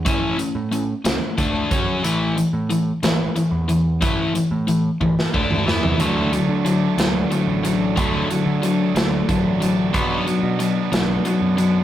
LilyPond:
<<
  \new Staff \with { instrumentName = "Overdriven electric guitar" } { \clef bass \time 6/8 \key a \major \tempo 4. = 61 r2. | r2. | r2. | <d fis a d'>8 <d fis a d'>8 <d fis a d'>8 <d fis a d'>8 <d fis a d'>8 <d fis a d'>8 |
<d fis a d'>8 <d fis a d'>8 <d fis a d'>8 <d fis a d'>8 <d fis a d'>8 <d fis a d'>8 | <b, fis b d'>8 <b, fis b d'>8 <b, fis b d'>8 <b, fis b d'>8 <b, fis b d'>8 <b, fis b d'>8 | }
  \new Staff \with { instrumentName = "Overdriven electric guitar" } { \clef bass \time 6/8 \key a \major <a cis' e'>8 <a cis'>8 <a cis'>8 <a cis'>8 <d a d'>8 <fis cis' fis'>8 | <a, e a>8 <a, e>8 <a, e>8 <a, e>8 <a, e>8 <a, e>8 | <a, e a>8 <a, e>8 <a, e>8 <a, e>8 <d a d'>8 <e b e'>8 | <d fis a>8 <d fis>8 <d fis>8 <d fis>8 <d fis>8 <d fis>8 |
<d fis a>8 <d fis>8 <d fis>8 <d fis>8 <d fis>8 <d fis>8 | <b, fis b>8 <b, fis>8 <b, fis>8 <b, fis>8 <b, fis>8 <b, fis>8 | }
  \new Staff \with { instrumentName = "Picked electric bass" } { \clef bass \time 6/8 \key a \major a,,8 r16 a,8. cis,16 r16 d,8 fis,8 | a,,8. a,8. a,,8 r16 e,8. | a,,8 r16 a,8. a,,16 r16 d,8 e,8 | d,8. d8. d,8 r16 a,,8. |
d,8 r16 d8. d,8 r16 a,,8. | b,,8 r16 b,8. b,,8 r16 fis,8. | }
  \new DrumStaff \with { instrumentName = "Drums" } \drummode { \time 6/8 <hh bd>8 hh8 hh8 <hh sn>8 <hh bd>8 <hh bd>8 | hh8 hh8 hh8 <hh sn>8 hh8 hh8 | <hh bd>8 hh8 hh8 bd16 sn16 bd16 toml16 sn16 tomfh16 | hh8 hh8 hh8 <hh sn>8 hh8 hh8 |
<hh bd>8 hh8 hh8 <hh sn>8 <hh bd>8 hh8 | <hh bd>8 hh8 hh8 <hh sn>8 hh8 hh8 | }
>>